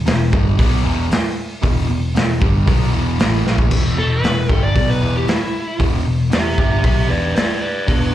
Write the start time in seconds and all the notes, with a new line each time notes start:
0.06 E1 E2 B2, snare, open hi-hat
0.32 G1 G2 D3 G3, kick
0.58 B1 B2 F#3 B3, kick, open hi-hat
0.84 E1 E2 B2 E3
1.10 muted distorted electric guitar stroke, muted picked electric bass stroke, snare, open hi-hat
1.62 E1 E2 B2 E3, kick, open hi-hat
1.89 E1 E2 B2
2.15 E1 E2 B2, snare, open hi-hat
2.40 G1 G2 D3 G3, kick
2.66 B1 B2 F#3 B3, kick, open hi-hat
2.92 E1 E2 B2 E3
3.19 A1 A2 E3 A3, snare, open hi-hat
3.45 A#1 A#2 F3 A#3, snare
3.58 kick
3.70 E1 E2 B2 E3, kick, crash
3.96 E1 E2 B2 A4
4.13 B4
4.23 E1 E2 B2, snare, open hi-hat
4.48 G1 G2 D3 G3, kick
4.64 D5
4.75 B1 B2 F#3 B3, kick, open hi-hat
4.90 B4
5.01 E1 E2 B2 E3
5.17 G4
5.27 E4, muted picked electric bass stroke, muted distorted electric guitar stroke, snare, open hi-hat
5.79 E1 E2 B2 E3, kick, open hi-hat
6.05 E1 E2 B2
6.30 E1 E2 B2 G4, snare, open hi-hat
6.34 E5
6.57 G1 G2 D3 G3 G4 E5, kick
6.82 B1 B2 F#3 B3 G4 E5, kick, open hi-hat
7.08 E1 E2 B2 E3 B4 D5
7.35 B4 D5, muted distorted electric guitar stroke, muted picked electric bass stroke, snare, open hi-hat
7.61 B4 D5
7.87 E1 E2 B2 E3 D4 B4, kick, open hi-hat